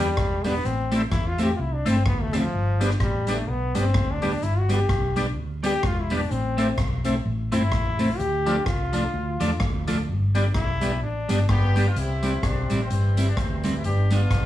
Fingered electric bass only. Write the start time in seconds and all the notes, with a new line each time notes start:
0.00 E2
0.18 E1
0.65 A1
1.12 E2
1.59 C2
1.87 G1
2.06 D2
2.54 G1
3.00 A1
3.48 B1
3.76 G1
3.95 D2
4.43 G1
4.89 B1
5.37 D2
5.84 E1
6.31 A1
6.78 B1
7.25 A1
7.53 G1
7.72 A1
8.19 D2
8.66 C2
9.14 D2
9.41 E2
9.61 D2
10.08 G1
10.55 B1
11.02 A1
11.30 G1
11.49 G1
11.96 C2
12.43 B1
12.71 A1
12.90 G1
13.37 D2
13.84 G1
14.31 B1